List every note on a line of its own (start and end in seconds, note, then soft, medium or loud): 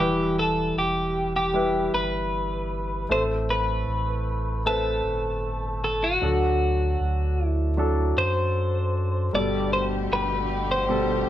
0.00 0.73 E1 medium
0.00 1.12 E3 soft
0.00 1.47 G3 soft
0.00 1.47 E4 soft
0.00 0.36 G4 medium
0.00 1.48 B4 medium
0.39 0.78 A4 medium
0.77 1.90 E1 medium
0.77 1.32 G4 medium
1.36 1.94 G4 medium
1.54 3.02 G3 medium
1.54 3.03 E4 medium
1.54 3.03 B4 medium
1.94 3.07 G1 medium
1.94 3.12 B4 medium
3.09 3.84 A1 loud
3.09 4.23 A2 soft
3.09 4.58 A3 medium
3.09 4.58 C4 soft
3.09 4.59 A4 medium
3.09 3.22 C5 medium
3.51 4.67 B4 medium
3.88 5.01 A1 medium
4.65 6.14 A3 medium
4.65 6.15 C4 medium
4.65 5.83 A4 medium
4.65 6.15 B4 medium
5.05 6.18 G1 medium
5.84 6.04 A4 medium
6.04 7.47 F#4 medium
6.21 6.96 D2 medium
6.21 7.35 D3 soft
6.21 7.70 F#3 medium
6.21 7.71 D4 soft
6.21 7.71 A4 medium
7.00 8.13 D2 medium
7.47 8.24 E4 medium
7.77 9.26 F#3 medium
7.77 9.26 D4 medium
7.77 9.27 A4 medium
8.17 9.30 F#2 medium
8.17 9.35 C5 medium
9.33 10.08 G1 medium
9.33 10.47 G2 soft
9.33 11.29 B2 medium
9.33 10.82 B2 soft
9.33 11.29 D3 medium
9.33 10.82 G3 medium
9.33 11.29 A3 medium
9.33 11.29 G4 medium
9.33 10.83 A4 medium
9.33 9.73 D5 medium
9.73 9.84 C5 medium
10.11 11.25 G1 medium
10.11 10.71 B4 medium
10.71 11.29 C5 medium
10.89 11.29 B2 medium
10.89 11.29 G3 medium
10.89 11.29 A4 medium